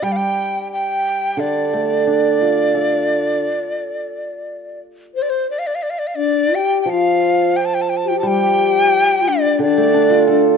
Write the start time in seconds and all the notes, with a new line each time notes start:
0.02 G3 G5
0.12 F5
0.16 G5
0.72 G5
1.37 D3 D5
1.73 A3
2.07 D4
2.41 F4
2.74 A4
5.14 C5
5.22 D5
5.30 C5
5.50 D5
5.59 F5
5.67 D5
5.75 F5
5.83 D5
5.90 F5
5.99 D5
6.07 F5
6.15 D4 D5
6.55 G4 G5
6.82 F3 G5
6.90 F4 F5
7.56 G5
7.65 A5
7.74 G5
7.82 A5
7.89 G5
7.97 A5
8.04 G4 G5
8.09 F4
8.14 G4
8.20 G3 A5
8.25 G4 G5
9.21 F4
9.28 D4 D5
9.59 D3 D5
9.63 D4
9.77 A3
9.94 D4
10.10 F4
10.27 D4 A4